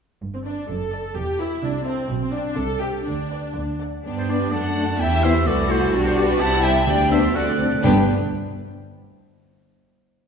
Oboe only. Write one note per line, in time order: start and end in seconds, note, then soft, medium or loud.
4.18 4.31 C5 medium
4.29 4.54 D5 medium
4.52 5.02 A5 medium
5.00 5.25 G5 medium
5.24 5.48 E5 medium
5.47 5.72 D5 medium
5.70 5.94 C5 medium
6.05 6.11 C5 medium
6.17 6.42 D5 medium
6.41 6.65 A5 loud
6.64 6.86 G5 medium
6.87 7.10 G5 medium
7.12 7.37 E5 medium
7.36 7.84 F#5 medium
7.84 8.04 G5 medium